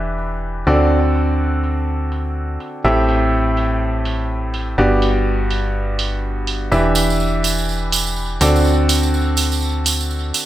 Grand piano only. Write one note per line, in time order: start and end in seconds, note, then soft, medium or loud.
0.00 0.64 E3 medium
0.00 0.64 D4 medium
0.00 0.64 G4 medium
0.00 0.64 B4 medium
0.00 0.64 E5 medium
0.67 2.82 D3 medium
0.67 2.82 C4 medium
0.67 2.82 F#4 medium
0.67 2.82 A4 medium
0.67 2.82 D5 medium
2.84 4.76 A2 medium
2.84 4.76 C4 medium
2.84 4.76 G4 medium
2.84 4.76 A4 medium
2.84 4.76 E5 medium
4.78 6.69 G2 medium
4.78 6.69 B3 medium
4.78 6.69 F#4 medium
4.78 6.69 G4 medium
4.78 6.69 D5 medium
6.72 8.39 E3 medium
6.72 8.39 D4 medium
6.72 8.39 G4 medium
6.72 8.39 B4 medium
6.72 8.39 E5 medium
8.41 10.46 D3 medium
8.41 10.46 C4 medium
8.41 10.46 F#4 medium
8.41 10.46 A4 medium
8.41 10.46 D5 medium